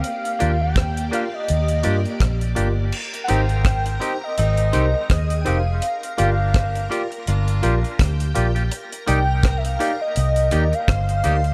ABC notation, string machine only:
X:1
M:4/4
L:1/8
Q:"Swing 16ths" 1/4=83
K:Ablyd
V:1 name="String machine"
[B,Gd]8 | [Bb]6 [Aa]2 | [Bb]6 [Gg]2 | [Bb]6 [cc']2 |]